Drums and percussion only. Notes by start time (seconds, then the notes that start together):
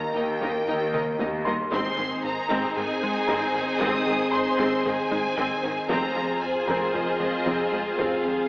0.42 taiko
0.94 taiko mid
1.20 taiko high
1.46 taiko low
1.72 taiko
2.50 taiko
3.28 taiko
3.81 taiko
4.59 taiko
4.85 taiko low
5.38 taiko
5.90 taiko
6.68 taiko
6.95 taiko low
7.47 taiko
7.99 taiko